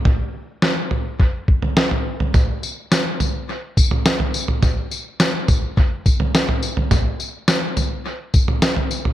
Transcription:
\new DrumStaff \with { instrumentName = "Drums" } \drummode { \time 4/4 \tempo 4 = 105 <bd tomfh>4 sn8 tomfh8 bd8 bd16 tomfh16 sn16 tomfh8 tomfh16 | <bd tamb tomfh>8 tamb8 <sn tamb>8 <tamb tomfh>8 r8 <bd tamb>16 tomfh16 <sn tamb>16 tomfh16 tamb16 tomfh16 | <bd tamb tomfh>8 tamb8 <sn tamb>8 <bd tamb tomfh>8 bd8 <bd tamb>16 tomfh16 <sn tamb>16 tomfh16 tamb16 tomfh16 | <bd tamb tomfh>8 tamb8 <sn tamb>8 <tamb tomfh>8 r8 <bd tamb>16 tomfh16 <sn tamb>16 tomfh16 tamb16 tomfh16 | }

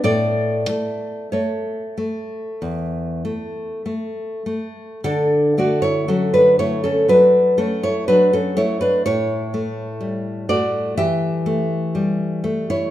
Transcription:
\new Staff \with { instrumentName = "Nylon-string guitar" } { \time 4/4 \key d \major \tempo 4 = 60 << { <a' d''>4 <a' cis''>2~ <a' cis''>8 r8 | <d' a'>8 <fis' d''>16 <e' cis''>16 <cis' a'>16 <d' b'>16 <e' cis''>16 <cis' a'>16 <d' b'>8 <cis' a'>16 <e' cis''>16 <d' b'>16 <cis' a'>16 <e' cis''>16 <d' b'>16 | <e' cis''>4. <fis' d''>8 <g' e''>4.~ <g' e''>16 <e' cis''>16 | } \\ { a,8 a8 a8 a8 e,8 a8 a8 a8 | d8 a8 fis8 a8 fis8 a8 fis8 a8 | a,8 a8 g8 a8 e8 a8 g8 a8 | } >> }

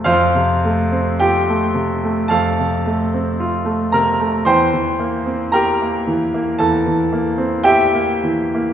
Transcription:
<<
  \new Staff \with { instrumentName = "Grand piano" } { \time 4/4 \key f \major \tempo 4 = 56 <f' c'' f''>4 <g' g''>4 <a' f'' a''>4. <bes' bes''>8 | <c'' g'' c'''>4 <bes' g'' bes''>4 <a' a''>4 <g' e'' g''>4 | }
  \new Staff \with { instrumentName = "Grand piano" } { \time 4/4 \key f \major f,16 c16 a16 c'16 f'16 a16 c16 a16 f,16 c16 a16 c'16 f'16 a16 c16 a16 | e,16 e16 bes16 c'16 g'16 bes16 e16 bes16 e,16 e16 bes16 c'8 bes16 e16 bes16 | }
>>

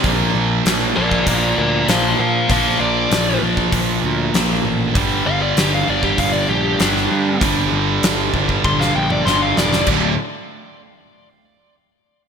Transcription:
<<
  \new Staff \with { instrumentName = "Lead electric guitar" } { \time 4/4 \key bes \lydian \tempo 4 = 98 r4. <bes' d''>8 <bes' d''>8 <bes' d''>8 <c'' f''>8 <c'' f''>8 | <c'' f''>8 d''4 r2 r8 | r8 f''16 d''16 g'16 f''16 d''16 g'16 f''16 d''16 g'8 d'4 | r2 c'''16 f''16 g''16 d''16 c'''16 f''16 d''8 |
r1 | }
  \new Staff \with { instrumentName = "Distorted electric guitar" } { \clef bass \time 4/4 \key bes \lydian <bes, f bes>4. <bes, f bes>4. <bes, f bes>4 | <bes, f bes>4. <bes, f bes>4. <bes, f bes>4 | <g, d g>4. <g, d g>4. <g, d g>4 | <g, d g>4. <g, d g>4. <g, d g>4 |
<d, a, d>8 r2. r8 | }
  \new Staff \with { instrumentName = "Distorted electric guitar" } { \clef bass \time 4/4 \key bes \lydian <bes, f bes>1 | <bes, f bes>1 | <g, d g>1 | <g, d g>1 |
<d, a, d>8 r2. r8 | }
  \new Staff \with { instrumentName = "Picked electric bass" } { \clef bass \time 4/4 \key bes \lydian bes,,8 bes,,8 bes,,8 bes,,8 bes,,8 d,8 bes,,8 bes,8 | bes,,8 bes,,8 bes,,8 bes,,8 bes,,8 d,8 bes,,8 a,,8 | g,,8 g,,8 g,,8 g,,8 g,,8 bes,,8 g,,8 g,8 | g,,8 g,,8 g,,8 g,,8 g,,8 bes,,8 g,,8 e,,8 |
d,,8 r2. r8 | }
  \new DrumStaff \with { instrumentName = "Drums" } \drummode { \time 4/4 <hho bd>4 <hho sn>8. bd16 <hho bd>4 <hho sn>4 | <hho bd>4 <hho sn>8. bd16 <hho bd>4 <hho sn>4 | <hho bd>4 <hho sn>8. bd16 <hho bd>4 <hho sn>16 sn8. | <hho bd>4 <hho sn>8 bd16 bd16 <bd tommh>16 sn8 toml16 sn8 sn16 sn16 |
<cymc bd>4 r4 r4 r4 | }
>>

